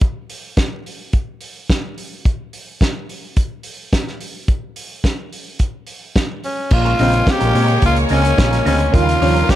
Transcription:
0.01 kick loud
0.01 closed hi-hat medium
0.30 open hi-hat medium
0.57 kick loud
0.57 snare medium
0.57 closed hi-hat medium
0.86 open hi-hat medium
1.13 kick loud
1.13 closed hi-hat medium
1.41 open hi-hat medium
1.70 kick loud
1.70 snare loud
1.70 closed hi-hat medium
1.98 open hi-hat medium
2.25 kick loud
2.25 closed hi-hat medium
2.53 open hi-hat medium
2.81 kick loud
2.81 snare medium
2.81 closed hi-hat soft
3.09 open hi-hat medium
3.37 kick loud
3.37 closed hi-hat medium
3.63 open hi-hat medium
3.93 kick loud
3.93 snare loud
3.93 closed hi-hat medium
4.07 snare soft
4.21 open hi-hat medium
4.48 kick loud
4.48 closed hi-hat medium
4.76 open hi-hat medium
5.04 kick loud
5.04 snare medium
5.04 closed hi-hat medium
5.33 open hi-hat medium
5.59 kick medium
5.59 closed hi-hat medium
5.87 open hi-hat medium
6.16 kick loud
6.16 snare loud
6.16 closed hi-hat medium
6.44 6.74 C#4 medium
6.44 open hi-hat medium
6.71 6.93 A#1 loud
6.71 6.85 A#2 medium
6.71 9.55 C#3 medium
6.71 8.90 G#3 medium
6.71 8.92 G#3 medium
6.71 8.92 A#3 medium
6.71 8.90 A#3 medium
6.71 9.55 F4 medium
6.71 7.33 F4 loud
6.71 8.90 C#5 medium
6.71 muted clean electric guitar stroke soft
6.71 kick loud
6.71 crash loud
6.85 6.97 G#3 medium
6.85 6.98 C#4 medium
6.85 6.98 F4 medium
6.85 6.99 A#4 medium
6.85 closed hi-hat soft
6.98 7.21 A#1 loud
6.98 7.13 C#3 loud
6.98 7.10 G#3 medium
6.98 7.13 G#3 medium
6.98 7.13 C4 loud
6.98 7.10 C#4 medium
6.98 7.10 F4 medium
6.98 7.11 A#4 medium
6.98 open hi-hat medium
7.14 7.19 G#3 soft
7.14 7.19 C4 soft
7.14 closed hi-hat medium
7.27 7.40 G#3 medium
7.27 7.41 C4 medium
7.27 muted clean electric guitar stroke soft
7.27 kick loud
7.27 snare loud
7.27 closed hi-hat medium
7.31 7.85 G4 loud
7.40 7.52 A#1 loud
7.40 7.55 A#2 medium
7.40 7.53 G#3 medium
7.40 7.53 C#4 medium
7.40 7.54 F4 medium
7.40 7.54 A#4 medium
7.40 closed hi-hat medium
7.54 7.76 A#2 loud
7.54 7.66 G#3 medium
7.54 7.68 G#3 medium
7.54 7.68 C4 medium
7.54 7.66 C#4 medium
7.54 7.66 F4 medium
7.54 7.66 A#4 medium
7.54 open hi-hat medium
7.68 closed hi-hat medium
7.82 8.04 C#2 loud
7.82 7.96 A#2 medium
7.82 7.97 F4 medium
7.82 kick loud
7.82 closed hi-hat medium
7.96 muted clean electric guitar stroke medium
7.96 closed hi-hat medium
8.09 8.32 C#2 loud
8.09 8.23 C#3 medium
8.09 8.24 G#3 loud
8.09 8.23 G#3 medium
8.09 8.23 C4 medium
8.09 8.23 C#4 medium
8.09 8.63 C#4 loud
8.09 8.23 F4 loud
8.09 8.22 A#4 loud
8.09 open hi-hat medium
8.24 8.30 G#3 soft
8.24 8.30 C4 soft
8.24 muted clean electric guitar stroke medium
8.24 closed hi-hat medium
8.38 8.60 A#1 medium
8.38 8.44 G#3 soft
8.38 8.44 C4 soft
8.38 muted clean electric guitar stroke medium
8.38 kick loud
8.38 snare loud
8.38 closed hi-hat medium
8.51 8.65 A#2 medium
8.51 8.63 G#3 medium
8.51 8.63 C#4 medium
8.51 8.63 F4 medium
8.51 8.63 A#4 medium
8.51 snare soft
8.51 closed hi-hat medium
8.65 8.87 D2 loud
8.65 8.79 C#3 medium
8.65 8.80 G#3 medium
8.65 8.79 G#3 medium
8.65 8.79 C4 medium
8.65 8.77 C#4 loud
8.65 8.96 C#4 medium
8.65 8.77 F4 loud
8.65 8.77 A#4 loud
8.65 open hi-hat medium
8.78 muted clean electric guitar stroke soft
8.78 closed hi-hat soft
8.92 9.15 D#2 loud
8.92 9.07 D#3 medium
8.92 9.07 G3 medium
8.92 9.55 G3 medium
8.92 9.05 C#4 loud
8.92 9.55 C#4 medium
8.92 9.55 D#4 medium
8.92 9.05 F4 loud
8.92 9.52 F4 loud
8.92 9.04 A#4 loud
8.92 9.55 A#4 medium
8.92 9.55 F5 medium
8.92 kick loud
8.92 closed hi-hat medium
9.06 muted clean electric guitar stroke medium
9.06 closed hi-hat medium
9.20 9.42 D#2 loud
9.20 9.34 F3 loud
9.20 9.35 G3 medium
9.20 9.35 C#4 loud
9.20 muted clean electric guitar stroke medium
9.20 open hi-hat medium
9.34 9.47 G3 medium
9.34 9.42 G3 soft
9.34 9.46 C#4 medium
9.34 9.42 C#4 soft
9.34 9.46 F4 medium
9.34 9.46 A#4 medium
9.34 closed hi-hat soft
9.49 9.55 G3 medium
9.49 9.55 C#4 medium
9.49 9.55 G4 loud
9.49 kick loud
9.49 snare loud
9.49 closed hi-hat medium

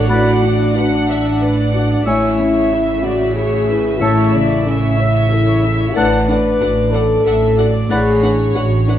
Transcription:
0.00 2.02 A1 medium
0.00 0.10 A2 medium
0.00 2.02 A2 medium
0.00 0.12 D4 medium
0.00 2.02 D4 medium
0.00 0.12 F#4 medium
0.00 0.12 B4 medium
0.00 0.11 D5 medium
0.00 2.02 F#5 medium
0.08 2.02 A2 medium
0.08 0.73 F#4 medium
0.08 0.25 B4 medium
0.08 0.75 D5 medium
0.08 0.33 D5 medium
0.08 0.32 F#5 medium
0.08 0.40 B5 medium
0.26 0.43 D5 medium
0.43 0.95 D4 soft
0.43 0.59 F#5 medium
0.59 0.75 D5 medium
0.75 1.72 D4 medium
0.75 1.28 F#4 soft
0.75 0.92 B4 medium
0.75 1.09 F#5 medium
0.92 1.08 D5 medium
1.08 1.61 D5 medium
1.08 1.41 E5 medium
1.08 1.25 F#5 medium
1.24 1.41 D5 medium
1.41 1.57 B4 medium
1.41 1.93 B4 medium
1.41 2.06 D5 medium
1.58 1.74 D5 medium
1.73 2.05 D4 medium
1.73 2.06 F#4 soft
1.73 1.90 F#5 medium
1.90 2.06 D5 medium
2.05 5.92 A1 medium
2.05 5.92 A2 medium
2.05 3.96 A2 medium
2.05 5.92 C#3 medium
2.05 2.21 G#3 medium
2.05 3.01 E4 loud
2.05 2.71 C#5 medium
2.05 2.29 C#5 medium
2.05 2.28 E5 medium
2.05 5.97 E5 medium
2.05 2.36 G#5 medium
2.23 2.39 C#4 medium
2.38 2.91 C#4 medium
2.38 2.55 E4 medium
2.55 2.71 G#4 medium
2.71 2.87 E4 medium
2.71 3.23 E4 soft
2.71 3.03 E5 medium
2.87 3.03 C#4 medium
3.02 3.20 G#3 medium
3.02 3.35 F#4 medium
3.02 3.36 D5 medium
3.02 3.55 E5 medium
3.20 3.36 C#4 medium
3.35 3.52 E4 medium
3.35 3.99 G#4 medium
3.35 3.88 G#4 medium
3.35 3.67 C#5 medium
3.52 3.68 G#4 medium
3.67 3.84 E4 medium
3.67 4.01 E4 medium
3.67 4.01 B4 medium
3.83 4.00 C#4 medium
4.00 4.93 A2 medium
4.00 5.93 A2 medium
4.00 4.65 E4 loud
4.00 4.15 A4 medium
4.00 4.23 C#5 medium
4.00 4.33 C#5 medium
4.00 4.23 E5 medium
4.00 4.31 A5 medium
4.16 4.33 C#5 medium
4.32 4.86 C#3 medium
4.32 4.65 D5 medium
4.32 4.48 E5 medium
4.48 4.64 C#5 medium
4.64 4.98 C#4 medium
4.64 5.18 E4 medium
4.64 4.81 A4 medium
4.64 5.97 E5 medium
4.80 4.97 C#5 medium
4.97 5.28 E4 medium
4.97 5.51 C#5 medium
4.97 5.13 E5 medium
5.13 5.30 C#5 medium
5.29 5.95 E4 medium
5.29 5.46 A4 medium
5.29 5.84 A4 medium
5.46 5.63 C#5 medium
5.63 5.97 E4 medium
5.63 5.80 E5 medium
5.80 5.96 C#5 medium
5.96 6.53 A1 medium
5.96 6.53 A2 medium
5.96 7.87 A2 medium
5.96 6.04 D4 medium
5.96 6.04 A4 medium
5.96 6.93 B4 loud
5.96 6.19 D5 medium
5.96 6.28 F#5 medium
5.96 6.05 F#5 medium
5.96 6.19 F#5 medium
5.96 6.26 A5 medium
6.28 6.80 D4 medium
6.28 6.37 D4 medium
6.28 6.37 A4 medium
6.28 7.24 D5 medium
6.28 6.38 F#5 medium
6.60 7.18 A1 medium
6.60 7.18 A2 medium
6.60 6.68 D4 medium
6.60 7.12 F#4 soft
6.60 6.68 A4 medium
6.60 6.69 F#5 medium
6.91 7.01 D4 medium
6.91 7.73 A4 loud
6.91 7.01 A4 medium
6.91 7.45 D5 medium
6.91 7.02 F#5 medium
7.25 7.82 A1 medium
7.25 7.83 A2 medium
7.25 7.34 D4 medium
7.25 7.77 A4 medium
7.25 7.34 A4 medium
7.25 7.58 E5 medium
7.25 7.35 F#5 medium
7.57 7.66 D4 medium
7.57 7.90 F#4 medium
7.57 7.66 A4 medium
7.57 7.91 D5 medium
7.57 7.66 F#5 medium
7.89 8.48 A1 medium
7.89 8.53 A2 medium
7.89 8.48 A2 medium
7.89 7.98 D4 medium
7.89 8.54 G#4 loud
7.89 7.98 B4 medium
7.89 8.99 C#5 medium
7.89 8.13 D5 medium
7.89 8.13 F#5 medium
7.89 7.99 F#5 medium
7.89 8.21 B5 medium
8.22 8.75 D4 medium
8.22 8.31 D4 medium
8.22 8.31 B4 medium
8.22 8.31 F#5 medium
8.54 8.99 A1 medium
8.54 8.99 A2 medium
8.54 8.63 D4 medium
8.54 8.99 F#4 soft
8.54 8.89 F#4 medium
8.54 8.63 B4 soft
8.54 8.64 F#5 medium
8.87 8.99 D4 medium
8.87 8.96 D4 medium
8.87 8.96 B4 medium
8.87 8.97 F#5 medium

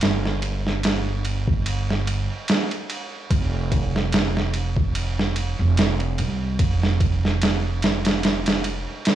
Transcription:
0.01 2.26 G1 loud
0.01 snare loud
0.01 ride medium
0.25 snare soft
0.42 ride medium
0.67 snare soft
0.83 snare loud
0.83 ride medium
1.25 ride medium
1.47 kick loud
1.66 ride medium
1.90 snare soft
2.07 ride medium
2.48 snare loud
2.48 ride medium
2.71 ride soft
2.90 ride medium
3.31 5.54 F1 loud
3.31 kick loud
3.31 ride medium
3.72 kick medium
3.72 ride medium
3.96 snare medium
4.12 snare loud
4.12 ride medium
4.37 snare soft
4.54 ride medium
4.77 kick loud
4.95 ride medium
5.19 snare medium
5.36 ride medium
5.59 6.20 F1 loud
5.77 snare loud
5.77 ride medium
6.00 ride soft
6.18 6.55 C2 medium
6.18 ride medium
6.59 8.83 F1 loud
6.59 kick loud
6.59 ride medium
6.83 snare medium
7.00 kick medium
7.00 ride medium
7.25 snare soft
7.42 snare loud
7.42 ride medium
7.82 snare loud
7.82 ride medium
8.05 snare loud
8.05 ride medium
8.23 snare loud
8.23 ride medium
8.46 snare loud
8.46 ride medium
8.64 ride medium
9.05 snare loud
9.05 ride medium

